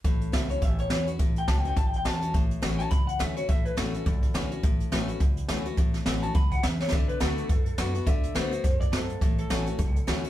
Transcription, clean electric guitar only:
0.34 0.50 E5 medium
0.50 0.63 C#5 medium
0.63 0.79 E5 loud
0.80 0.91 C#5 medium
0.92 1.08 C#5 medium
1.38 1.48 G5 medium
1.48 1.58 A5 medium
1.58 1.67 G5 medium
1.68 1.77 G5 medium
1.77 1.87 A5 medium
1.87 1.95 G5 medium
1.96 2.05 G5 medium
2.06 2.15 A5 medium
2.16 2.34 A5 loud
2.79 2.90 A5 loud
2.91 3.07 B5 medium
3.07 3.19 F#5 medium
3.20 3.36 E5 medium
3.37 3.48 C#5 medium
3.49 3.65 E5 loud
3.65 3.77 B4 medium
3.77 4.33 A4 medium
6.23 6.34 A5 loud
6.35 6.51 B5 medium
6.52 6.64 F#5 medium
6.64 6.80 E5 medium
6.81 6.92 C#5 medium
6.92 7.09 E5 medium
7.08 7.20 B4 medium
7.21 7.77 A4 loud
8.07 8.35 E5 loud
8.36 8.80 C5 medium
8.81 8.92 D5 loud
8.93 9.37 A4 medium
9.39 10.22 A4 medium

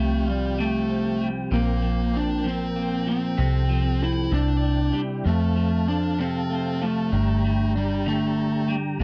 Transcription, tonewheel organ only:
0.00 4.28 F3 medium
0.00 3.35 C4 medium
0.00 1.50 G4 medium
0.00 4.28 G5 medium
1.52 3.37 A#4 medium
3.39 5.24 C4 medium
3.39 4.31 A4 medium
4.34 5.26 E4 medium
4.34 5.26 D5 medium
4.34 5.26 G5 medium
5.26 7.11 C4 medium
5.26 7.11 A4 medium
5.26 7.11 F5 medium
5.26 7.11 A5 medium
7.13 8.98 D4 medium
7.13 8.98 G4 medium
7.13 8.98 G5 medium
7.13 8.98 A#5 medium
9.00 9.04 C4 medium
9.00 9.04 F5 medium
9.00 9.04 A5 medium

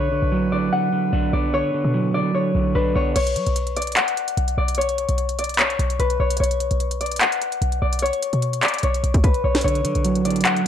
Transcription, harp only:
0.00 1.56 B4 medium
0.00 0.58 C#5 medium
0.52 1.33 D5 medium
0.73 2.33 F#5 medium
1.33 1.60 D5 medium
1.54 2.20 C#5 loud
2.14 2.41 D5 medium
2.35 2.95 C#5 medium
2.75 4.80 B4 medium
2.95 3.15 C#5 medium
3.16 3.83 C#5 loud
3.77 4.57 D5 medium
3.97 5.57 F#5 medium
4.58 4.84 D5 medium
4.78 5.45 C#5 loud
5.39 5.65 D5 medium
5.59 6.19 C#5 medium
6.00 8.04 B4 medium
6.20 6.40 C#5 medium
6.40 7.07 C#5 medium
7.01 7.81 D5 medium
7.21 8.82 F#5 medium
7.82 8.08 D5 medium
8.02 8.69 C#5 loud
8.63 8.89 D5 medium
8.83 9.44 C#5 medium
9.24 10.68 B4 medium
9.44 9.64 C#5 medium
9.64 10.31 C#5 loud
10.25 10.68 D5 medium
10.45 10.68 F#5 medium

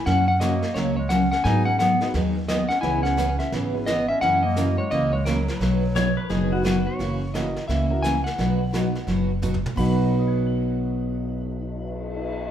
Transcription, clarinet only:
0.06 0.26 C#4 medium
0.29 0.40 C#4 medium
0.41 0.73 A#3 medium
0.76 0.96 F#3 medium
0.98 1.09 G#3 medium
1.11 1.31 C#4 medium
1.32 1.44 C#4 medium
1.45 1.65 D#4 medium
1.66 1.78 C#4 medium
1.81 2.00 B3 medium
2.02 2.08 B3 medium
2.49 2.70 B3 medium
2.69 2.80 C#4 medium
2.81 3.04 E4 medium
3.03 3.38 C#4 medium
3.39 3.51 C#4 medium
3.87 4.10 B3 medium
4.09 4.22 C#4 medium
4.22 4.42 C#4 loud
4.45 4.76 A#3 medium
4.78 4.90 G#3 medium
4.92 5.12 A#3 medium
5.14 5.25 G#3 medium
5.26 5.46 F#3 medium
5.49 6.23 F#3 medium
6.23 6.61 F3 medium

